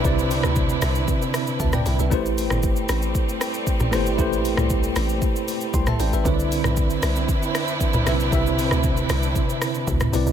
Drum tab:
HH |--o---o---o---o-|--o---o---o---o-|--o---o---o---o-|--o---o---o---o-|
SH |xxxxxxxxxxxxxxxx|xxxxxxxxxxxxxxxx|xxxxxxxxxxxxxxxx|xxxxxxxxxxxxxxxx|
SD |---r--r---r--r--|---r--r---r---r-|---r--r------r--|---r--r---r---r-|
T2 |-------------o--|---o---------o--|---o---------o--|---o---------o--|
BD |o---o---o---o---|o---o---o---o---|o---o---o---o---|o---o---o---o---|

HH |--o---o---o---o-|
SH |xxxxxxxxxxxxxxxx|
SD |---r--r---r--r--|
T2 |-------------o--|
BD |o---o---o---o---|